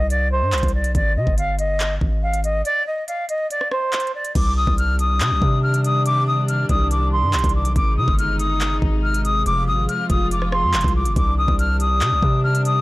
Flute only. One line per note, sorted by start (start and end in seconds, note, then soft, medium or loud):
0.10 0.30 D5 medium
0.31 0.71 C5 medium
0.74 0.94 D5 medium
0.95 1.15 D5 medium
1.16 1.36 D#5 medium
1.38 1.57 F5 medium
1.59 1.94 D#5 medium
2.23 2.42 F5 medium
2.44 2.64 D#5 medium
2.65 2.85 D5 loud
2.87 3.06 D#5 medium
3.08 3.27 F5 medium
3.29 3.49 D#5 medium
3.51 3.70 D5 medium
3.71 4.12 C5 medium
4.14 4.34 D5 medium
4.36 4.55 D6 loud
4.57 4.76 D#6 medium
4.78 4.98 F6 loud
4.99 5.59 D#6 loud
5.63 5.83 F6 medium
5.84 6.04 D#6 medium
6.06 6.25 D6 loud
6.27 6.47 D#6 medium
6.48 6.68 F6 medium
6.70 6.89 D#6 medium
6.91 7.11 D6 medium
7.12 7.52 C6 medium
7.55 7.75 D6 medium
7.76 7.96 D6 medium
7.97 8.17 D#6 medium
8.19 8.38 F6 loud
8.39 8.75 D#6 medium
9.03 9.23 F6 medium
9.25 9.44 D#6 medium
9.46 9.66 D6 loud
9.67 9.87 D#6 medium
9.88 10.08 F6 medium
10.10 10.30 D#6 medium
10.32 10.51 D6 medium
10.52 10.92 C6 medium
10.95 11.15 D6 medium
11.16 11.36 D6 loud
11.38 11.57 D#6 medium
11.59 11.79 F6 loud
11.80 12.40 D#6 medium
12.44 12.64 F6 medium
12.65 12.81 D#6 medium